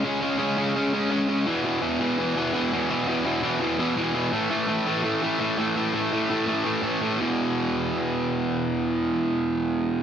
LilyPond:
\new Staff \with { instrumentName = "Distorted electric guitar" } { \clef bass \time 4/4 \key e \major \tempo 4 = 167 <cis gis cis'>8 <cis gis cis'>8 <cis gis cis'>8 <cis gis cis'>8 <cis gis cis'>8 <cis gis cis'>8 <cis gis cis'>8 <cis gis cis'>8 | <e, b, e>8 <e, b, e>8 <e, b, e>8 <e, b, e>8 <e, b, e>8 <e, b, e>8 <e, b, e>8 <e, b, e>8 | <e, b, e>8 <e, b, e>8 <e, b, e>8 <e, b, e>8 <e, b, e>8 <e, b, e>8 <e, b, e>8 <e, b, e>8 | <a, e a>8 <a, e a>8 <a, e a>8 <a, e a>8 <a, e a>8 <a, e a>8 <a, e a>8 <a, e a>8 |
<a, e a>8 <a, e a>8 <a, e a>8 <a, e a>8 <a, e a>8 <a, e a>8 <a, e a>8 <a, e a>8 | <e, b, e>1~ | <e, b, e>1 | }